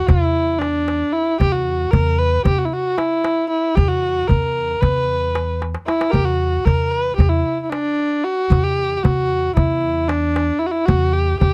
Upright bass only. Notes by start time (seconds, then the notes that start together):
0.09 E2
1.40 E2
1.93 E2
2.45 E2
3.77 E2
4.30 E2
4.82 E2
6.13 E2
6.66 E2
7.18 E2
8.50 E2
9.04 E2
9.57 E2
10.88 E2
11.41 E2